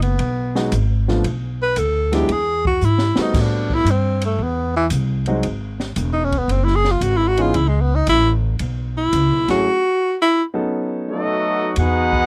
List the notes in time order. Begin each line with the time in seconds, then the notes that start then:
Already playing: F#1
0.02 B3, ride
0.19 B1, ride
0.55 F#3 G#3 B3 D#4 F#4, snare
0.72 G#1, hi-hat pedal, ride
1.08 F3 A3 B3 D4 F4, snare
1.24 B1, ride
1.62 B4
1.76 D2 A4, hi-hat pedal, ride
2.12 F#3 G#3 B3 D4 E4 G4, snare, ride
2.29 E2 G#4, ride
2.65 F#4, kick
2.81 G#2 E4, hi-hat pedal
2.98 snare
3.16 G3 A3 B3 C4 F#4, muted upright bass stroke, snare
3.22 D#4
3.34 A2, kick, snare, crash
3.40 D4
3.70 kick
3.74 E4
3.85 G2, hi-hat pedal, ride
3.91 C4
4.21 A3, ride
4.38 E2
4.43 B3
4.77 E3
4.90 C2, hi-hat pedal, ride
5.26 F#3 G#3 C4 D#4 F#4, ride
5.43 G#1, ride
5.80 snare
5.96 E1, hi-hat pedal, ride
6.13 D#4
6.24 C#4
6.32 kick, ride
6.38 B3
6.48 F#1 C4, ride
6.64 E4, snare
6.75 G#4
6.85 snare
6.91 F4
7.01 G#1 F#4, hi-hat pedal, ride
7.17 E4
7.28 F#4
7.37 E3 B3 C#4 D#4 G#4, ride
7.42 F4
7.54 C#2 E4, ride
7.68 G#3
7.81 B3
7.95 D#4
8.07 A1 E4, hi-hat pedal, ride
8.59 B1, ride
8.97 E4
9.13 C#2, hi-hat pedal, ride
9.30 B1
9.48 G#1 F#3 A3 C#4 E4 F#4 G#4, snare, ride
10.22 E4
10.54 F#3 B3 C#4 D#4 A4
11.08 F#3 A3 B3 D#4 F#4 A4 D#5
11.76 E2 B3 D#4 F#4 G#4 F#5, ride
11.80 B4
12.13 kick